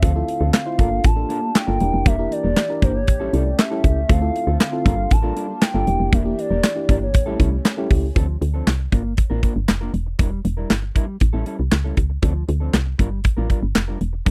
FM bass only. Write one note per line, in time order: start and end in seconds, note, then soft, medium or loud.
0.03 0.24 D2 loud
0.41 0.51 D2 loud
0.79 1.00 G1 medium
1.04 1.25 A1 loud
1.68 1.79 G1 medium
1.81 1.91 E1 loud
1.94 2.04 F1 medium
2.06 2.27 E1 loud
2.44 2.55 E1 loud
2.82 3.10 G1 loud
3.08 3.29 A1 loud
3.33 3.54 C2 loud
3.84 4.05 C#2 medium
4.10 4.31 D2 loud
4.47 4.58 D2 loud
4.86 5.07 G1 loud
5.11 5.32 A1 medium
5.75 5.85 G1 medium
5.87 5.98 E1 loud
6.00 6.10 F1 loud
6.13 6.34 E1 loud
6.51 6.61 E1 loud
6.89 7.16 G1 loud
7.15 7.36 A1 loud
7.40 7.61 C2 loud
7.91 8.12 C#2 medium
8.16 8.37 D2 loud
8.42 8.63 D2 loud
8.67 8.88 C2 medium
8.93 9.24 G1 medium
9.31 9.41 A1 medium
9.56 9.67 G1 medium
9.69 9.90 F1 medium
9.94 10.15 E1 loud
10.19 10.40 E1 loud
10.45 10.66 E1 loud
10.70 10.91 G1 medium
11.21 11.32 A1 medium
11.34 11.44 A1 medium
11.60 11.70 C2 medium
11.72 11.93 C#2 medium
11.97 12.18 C#2 medium
12.23 12.44 D2 loud
12.49 12.70 D2 loud
12.74 12.95 C2 medium
12.99 13.31 G1 medium
13.38 13.48 A1 medium
13.63 13.73 G1 medium
13.76 13.97 F1 medium
14.01 14.22 E1 medium
14.26 14.31 E1 loud